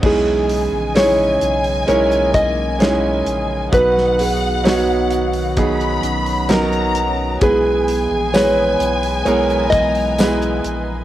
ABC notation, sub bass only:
X:1
M:4/4
L:1/16
Q:1/4=65
K:C#dor
V:1 name="Sub bass" clef=bass
B,,,3 A,,,3 B,,,2 B,,,6 A,,,2 | B,,,8- B,,,2 B,,,6 | B,,,3 A,,,3 B,,,2 B,,,6 A,,,2 |]